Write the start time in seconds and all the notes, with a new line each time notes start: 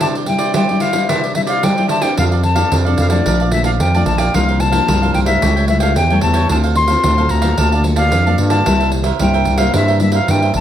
Already playing: G3 D4 E4
0.00 C3 E4 G4 C5 D5 A5, pandeiro
0.15 G4 C5 D5, pandeiro
0.26 G3 D4 E4 G5, muted cavaquinho stroke, pandeiro
0.38 G4 C5 D5, pandeiro
0.54 G3 E4 G4 C5 D5 G5, pandeiro
0.69 G3 D4 E4 G4 C5 D5, pandeiro
0.80 E4 G4 C5 D5 F5, pandeiro
0.93 G3 D4 E4, pandeiro
1.09 C3 E4 G4 C5 D5 E5, pandeiro
1.23 G4 C5 D5, pandeiro
1.34 G3 D4 E4 E5, muted cavaquinho stroke, pandeiro
1.47 G4 C5 D5 F5, pandeiro
1.63 G3 G5, pandeiro
1.77 G3 D4 E4 G4 C5 D5, pandeiro
1.88 E4 G4 C5 D5 A5, pandeiro
2.01 C4 D4 G4 A4 C5 D5 G5, pandeiro
2.17 F2 F3 D4 A4 D5 F5, pandeiro
2.31 A4 D5 F5, pandeiro
2.43 A5, muted cavaquinho stroke, pandeiro
2.55 C4 D4 A4 D5 F5, pandeiro
2.70 F2 C3 D4 A4 D5 F5, pandeiro
2.85 C4 D4 A4 D5 F5, pandeiro
2.98 F2 F5, pandeiro
3.09 F3 A3 D4 A4 D5 F5, pandeiro
3.25 A#1 A#2 A#4 D5 F5 A5, pandeiro
3.40 D5 F5 A5, pandeiro
3.51 F3 A3 D4 E5, muted cavaquinho stroke, pandeiro
3.64 D5 F5 A5, pandeiro
3.80 F2 G5, pandeiro
3.94 F3 A3 D4 D5 F5 A5, pandeiro
4.06 A#1 A5, pandeiro
4.18 D5 F5 G5 A5, pandeiro
4.34 C2 C3 F3 A#3 D4 F4 A#4 C5 F5, pandeiro
4.48 A#4 C5 F5, pandeiro
4.59 A5, muted cavaquinho stroke, pandeiro
4.72 F3 A#3 D4 A#4 C5 F5, pandeiro
4.87 C2 G2 F4 A#4 C5 F5, pandeiro
5.02 F3 A#3 D4 A#4 C5 F5, pandeiro
5.14 C2 G5, pandeiro
5.25 G3 A3 E4 A#4 C5 E5 F5, pandeiro
5.41 C#2 C#3 G4 A4 C#5 G5, pandeiro
5.56 A4 C#5 G5, pandeiro
5.68 G3 A3 E4 E5, muted cavaquinho stroke, pandeiro
5.80 A4 C#5 F5 G5, pandeiro
5.96 E2 C#3 G5, pandeiro
6.10 G3 A3 E4 A4 C#5 G5, pandeiro
6.21 E2 A5, pandeiro
6.33 A4 C#5 G5, pandeiro
6.49 D2 D3 C4 D4 F4 A4 C5 F5 A5, pandeiro
6.63 A4 C5 F5, pandeiro
6.75 C6, muted cavaquinho stroke, pandeiro
6.87 C4 F4 A4 C5 F5, pandeiro
7.03 D2 A2 D4 A4 C5 F5, pandeiro
7.18 C4 F4 A4 C5 F5, pandeiro
7.29 D2 A#5, pandeiro
7.41 A#3 F4 A4 C5 F5, pandeiro
7.58 D2 D3 A#4 D5 F5 A5, pandeiro
7.72 D5 F5 A5, pandeiro
7.84 A#3 F4 A4, muted cavaquinho stroke, pandeiro
7.96 D5 F5 A5, pandeiro
8.12 F2 D3, pandeiro
8.26 A#3 F4 A4 D5 F5 A5, pandeiro
8.38 G2, pandeiro
8.49 D5 F5 A5, pandeiro
8.66 C2 C3 G3 A#3 E4 A#4 C5 E5, pandeiro
8.80 A#4 C5 E5, pandeiro
8.91 muted cavaquinho stroke, pandeiro
9.03 A#4 C5 E5, pandeiro
9.19 C2 G2 G3 A#3 E4 A#4 C5 E5 G5, pandeiro
9.33 A#4 C5 E5, pandeiro
9.45 C2, pandeiro
9.58 G3 A#3 E4 A#4 C5 E5 F5, pandeiro
9.73 G2 C3 E4 A#4 C5 E5, pandeiro
9.88 A#4 C5 E5, pandeiro
10.00 G3 A#3 E4 E5, muted cavaquinho stroke, pandeiro
10.12 A#4 C5 E5 F5, pandeiro
10.28 G2 G3 A#3 E4 G5, pandeiro
10.42 A#4 C5 E5, pandeiro
10.54 A1 A5, pandeiro